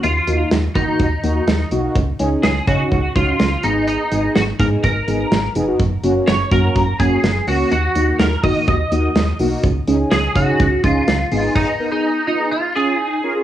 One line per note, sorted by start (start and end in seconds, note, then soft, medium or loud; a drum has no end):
0.03 0.20 D#2 loud
0.03 0.48 F4 medium
0.03 closed hi-hat medium
0.27 0.44 D#2 loud
0.27 0.37 A#3 medium
0.27 0.37 D#4 medium
0.27 0.37 F#4 medium
0.27 closed hi-hat medium
0.39 0.58 A#3 medium
0.39 0.58 D#4 medium
0.39 0.58 F4 medium
0.51 0.68 D#2 loud
0.51 snare loud
0.51 closed hi-hat medium
0.75 0.92 D#3 medium
0.75 0.85 A#3 medium
0.75 1.68 D#4 loud
0.75 0.85 D#4 medium
0.75 0.85 F#4 medium
0.75 kick loud
0.75 closed hi-hat medium
0.88 1.06 A#3 medium
0.88 1.06 D#4 medium
0.88 1.06 F#4 medium
0.99 1.16 D#2 loud
0.99 kick medium
0.99 closed hi-hat medium
1.24 1.40 D#2 loud
1.24 1.42 A#3 medium
1.24 1.42 D#4 medium
1.24 1.42 F#4 medium
1.24 closed hi-hat medium
1.47 1.64 D#2 loud
1.47 snare loud
1.47 closed hi-hat medium
1.71 1.88 B1 medium
1.71 1.81 A#3 medium
1.71 1.81 D#4 medium
1.71 1.81 F#4 loud
1.71 closed hi-hat medium
1.84 1.96 A#3 medium
1.84 1.96 D#4 medium
1.84 1.96 F#4 medium
1.96 2.12 C#2 loud
1.96 kick loud
1.96 closed hi-hat medium
2.19 2.37 C#2 loud
2.19 2.29 C#4 loud
2.19 2.29 D#4 medium
2.19 2.29 G#4 loud
2.19 closed hi-hat medium
2.32 2.50 C#4 medium
2.32 2.50 D#4 medium
2.32 2.50 G#4 medium
2.44 2.60 C#2 loud
2.44 2.66 G#4 medium
2.44 snare loud
2.44 closed hi-hat medium
2.67 2.84 C#3 loud
2.67 2.77 C#4 medium
2.67 2.77 D#4 medium
2.67 3.12 F#4 medium
2.67 2.77 G#4 medium
2.67 kick medium
2.67 closed hi-hat medium
2.80 2.98 C#4 medium
2.80 2.98 D#4 medium
2.80 2.98 G#4 medium
2.92 3.09 C#2 loud
2.92 kick medium
2.92 closed hi-hat medium
3.16 3.33 C#2 loud
3.16 3.34 C#4 medium
3.16 3.34 D#4 medium
3.16 3.65 F4 medium
3.16 3.34 F#4 medium
3.16 kick medium
3.16 closed hi-hat medium
3.40 3.57 C#2 loud
3.40 snare loud
3.40 closed hi-hat medium
3.63 3.97 G#1 loud
3.63 4.02 B3 medium
3.63 4.02 D#4 medium
3.63 3.86 D#4 medium
3.63 4.02 G#4 medium
3.63 closed hi-hat medium
3.88 4.32 D#4 medium
3.88 closed hi-hat medium
4.12 4.29 G#1 loud
4.12 4.21 B3 medium
4.12 4.21 D#4 medium
4.12 4.21 G#4 medium
4.12 closed hi-hat medium
4.24 4.42 B3 medium
4.24 4.42 D#4 medium
4.24 4.42 G#4 medium
4.35 4.53 G#1 loud
4.35 4.42 F#4 loud
4.35 snare loud
4.35 closed hi-hat medium
4.59 4.76 G#2 loud
4.59 4.69 B3 medium
4.59 4.69 D#4 medium
4.59 4.69 G#4 medium
4.59 4.66 A#4 loud
4.59 kick medium
4.59 closed hi-hat medium
4.72 4.90 B3 medium
4.72 4.90 D#4 medium
4.72 4.90 G#4 medium
4.83 5.01 G#1 loud
4.83 5.52 A#4 loud
4.83 kick medium
4.83 closed hi-hat medium
5.08 5.24 G#1 loud
5.08 5.26 B3 medium
5.08 5.26 D#4 medium
5.08 5.26 G#4 medium
5.08 closed hi-hat medium
5.31 5.48 G#1 loud
5.31 snare loud
5.31 closed hi-hat medium
5.55 5.72 F1 medium
5.55 5.65 B3 medium
5.55 5.65 D#4 medium
5.55 5.65 G#4 loud
5.55 closed hi-hat medium
5.68 5.80 B3 medium
5.68 5.80 D#4 medium
5.68 5.80 F#4 medium
5.80 5.96 F#1 loud
5.80 kick loud
5.80 closed hi-hat medium
6.04 6.20 F#1 loud
6.04 6.13 A#3 medium
6.04 6.13 C#4 medium
6.04 6.13 F#4 loud
6.04 closed hi-hat medium
6.16 6.34 A#3 medium
6.16 6.34 C#4 medium
6.16 6.34 F#4 medium
6.28 6.44 F#1 loud
6.28 6.51 C#5 medium
6.28 snare loud
6.28 closed hi-hat medium
6.52 6.68 F#2 loud
6.52 6.61 A#3 medium
6.52 6.61 C#4 medium
6.52 6.61 F#4 medium
6.52 7.01 A#4 medium
6.52 kick loud
6.52 closed hi-hat medium
6.64 6.82 A#3 medium
6.64 6.82 C#4 medium
6.64 6.82 F#4 medium
6.76 6.93 F#1 loud
6.76 kick loud
6.76 closed hi-hat medium
7.00 7.17 F#1 loud
7.00 7.18 A#3 medium
7.00 7.18 C#4 medium
7.00 7.18 F#4 medium
7.00 7.44 G#4 medium
7.00 kick medium
7.00 closed hi-hat medium
7.24 7.40 F#1 loud
7.24 snare loud
7.24 closed hi-hat medium
7.47 7.64 C#2 medium
7.47 7.57 A#3 medium
7.47 7.57 C#4 medium
7.47 7.57 F#4 medium
7.47 7.71 F#4 medium
7.47 open hi-hat medium
7.60 7.72 A#3 medium
7.60 7.72 C#4 medium
7.60 7.72 F#4 medium
7.72 7.88 D#2 loud
7.72 8.21 F#4 medium
7.72 closed hi-hat medium
7.96 8.12 D#2 loud
7.96 8.05 A#3 medium
7.96 8.05 D#4 medium
7.96 8.05 F#4 medium
7.96 closed hi-hat medium
8.08 8.26 A#3 medium
8.08 8.26 D#4 medium
8.08 8.26 F#4 medium
8.20 8.36 D#2 loud
8.20 8.43 A#4 loud
8.20 snare loud
8.20 closed hi-hat medium
8.44 8.60 D#3 medium
8.44 8.53 A#3 medium
8.44 8.53 D#4 medium
8.44 8.53 F#4 medium
8.44 8.67 D#5 loud
8.44 kick medium
8.44 open hi-hat medium
8.56 8.74 A#3 medium
8.56 8.74 D#4 medium
8.56 8.74 F#4 medium
8.68 8.85 D#2 loud
8.68 9.36 D#5 loud
8.68 kick medium
8.92 9.08 D#2 loud
8.92 9.10 A#3 medium
8.92 9.10 D#4 medium
8.92 9.10 F#4 medium
8.92 closed hi-hat medium
9.16 9.33 D#2 loud
9.16 snare loud
9.16 closed hi-hat medium
9.39 9.56 B1 medium
9.39 9.49 A#3 loud
9.39 9.49 D#4 medium
9.39 9.49 F#4 loud
9.39 open hi-hat medium
9.52 9.64 A#3 medium
9.52 9.64 D#4 medium
9.52 9.64 F#4 medium
9.64 9.80 C#2 loud
9.64 kick loud
9.64 closed hi-hat medium
9.87 10.04 C#2 loud
9.87 9.97 C#4 medium
9.87 9.97 D#4 medium
9.87 9.97 G#4 loud
9.87 closed hi-hat medium
10.00 10.18 C#4 medium
10.00 10.18 D#4 medium
10.00 10.18 G#4 medium
10.11 10.28 C#2 loud
10.11 10.36 G#4 loud
10.11 snare loud
10.11 closed hi-hat medium
10.36 10.52 C#3 loud
10.36 10.45 C#4 medium
10.36 10.45 D#4 medium
10.36 10.80 F#4 loud
10.36 10.45 G#4 medium
10.36 kick medium
10.36 closed hi-hat medium
10.48 10.66 C#4 medium
10.48 10.66 D#4 medium
10.48 10.66 G#4 medium
10.60 10.77 C#2 loud
10.60 kick loud
10.60 closed hi-hat medium
10.84 11.00 C#2 loud
10.84 11.02 C#4 medium
10.84 11.02 D#4 medium
10.84 11.55 F4 loud
10.84 11.02 G#4 medium
10.84 kick medium
10.84 closed hi-hat medium
11.07 11.24 C#2 loud
11.07 snare loud
11.07 closed hi-hat medium
11.31 11.48 G#1 loud
11.31 11.70 B3 medium
11.31 11.70 D#4 medium
11.31 11.70 G#4 medium
11.31 open hi-hat medium
11.55 11.90 D#4 loud
11.55 kick loud
11.55 crash medium
11.80 11.89 B3 medium
11.80 11.89 D#4 medium
11.80 11.89 A#4 medium
11.91 12.10 B3 medium
11.91 12.26 D#4 medium
11.91 12.10 D#4 medium
11.91 12.10 G#4 medium
12.27 12.37 B3 medium
12.27 12.50 D#4 medium
12.27 12.37 D#4 medium
12.27 12.37 F4 medium
12.40 12.52 B3 medium
12.40 12.52 D#4 medium
12.40 12.52 G#4 medium
12.51 13.02 F4 medium
12.76 12.94 C#4 medium
12.76 12.94 F4 medium
12.76 13.43 G#4 loud
12.76 12.94 G#4 medium
13.02 13.19 D#4 medium
13.24 13.33 C#4 medium
13.24 13.33 F4 medium
13.24 13.33 A#4 loud
13.36 13.43 C#4 medium
13.36 13.43 F4 medium
13.36 13.43 G#4 medium